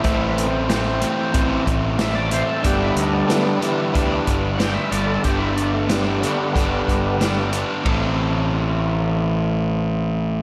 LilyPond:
<<
  \new Staff \with { instrumentName = "Tonewheel organ" } { \time 4/4 \key a \minor \tempo 4 = 92 e'8 c'2 r8 e''16 d''16 c''16 a'16 | g'16 e'16 dis'16 d'16 a16 g16 <e g>4 r8 <fis'' g''>16 e''16 d''16 a'16 | g'16 e'16 d'16 a16 g8 fis16 r2 r16 | r1 | }
  \new Staff \with { instrumentName = "Tonewheel organ" } { \clef bass \time 4/4 \key a \minor <e a c'>8 r2. r8 | <d g b>4. r2 r8 | r4. <d g b>4. r4 | r1 | }
  \new Staff \with { instrumentName = "Overdriven electric guitar" } { \clef bass \time 4/4 \key a \minor <a, e a c' e'>4 <a, e a c' e'>8 <a, e a c' e'>8 <a, e a c' e'>4 <a, e a c' e'>8 <a, e a c' e'>8 | <g, d g b d'>4 <g, d g b d'>8 <g, d g b d'>8 <g, d g b d'>4 <g, d g b d'>8 <g, d g b d'>8 | <g, d g b d'>4 <g, d g b d'>8 <g, d g b d'>8 <g, d g b d'>4 <g, d g b d'>8 <g, d g b d'>8 | <a, e a c' e' a'>1 | }
  \new Staff \with { instrumentName = "Picked electric bass" } { \clef bass \time 4/4 \key a \minor a,,2 a,,8 a,,4. | g,,8 d,8 r4 d,8 g,,4 g,,8 | g,,2 g,,8 g,,4. | a,,1 | }
  \new DrumStaff \with { instrumentName = "Drums" } \drummode { \time 4/4 <hh bd>8 hh8 <hh sn>8 hh8 <hh bd>8 <hh bd>8 <hh sn>8 hh8 | <hh bd>8 hh8 <hh sn>8 hh8 <hh bd>8 <hh bd>8 <hh sn>8 hh8 | <hh bd>8 hh8 <hh sn>8 hh8 <hh bd>8 <hh bd>8 <hh sn>8 hh8 | <bd rb>4 r4 r4 r4 | }
>>